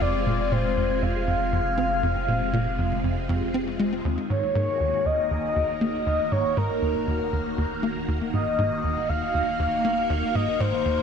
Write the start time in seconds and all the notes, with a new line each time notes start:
Already playing: F1 C3 G#3 C4 F4 G#4
0.01 F2 D5
0.26 A#2
0.52 A#2 C5
0.77 F2
1.02 F2 F5
1.27 F2
1.53 F2
1.78 C4
2.03 F2
2.28 A#2
2.53 A#2
2.79 F2
3.04 F2
3.29 F2
3.54 C4
3.79 G#3
4.05 D#1 D#2 D#3
4.30 G#2 C#5
4.40 A#3
4.55 G#2
4.61 F#4
4.80 D#2
5.05 D#2 A#4 D#5
5.31 D#2
5.56 D#2
5.81 A#3
6.06 D#2 D#5
6.32 G#2 C#5
6.57 G#2 A#4
6.82 D#2
7.07 D#2
7.33 D#2
7.58 D#2
7.83 A#3
8.08 D#2
8.33 G#2 D#5
8.58 G#2
8.84 D#2
9.09 D#2 F5
9.34 D#2
9.59 D#2
9.85 A#3
10.10 D#2 F5
10.35 G#2 D#5
10.60 G#2 C5
10.85 D#2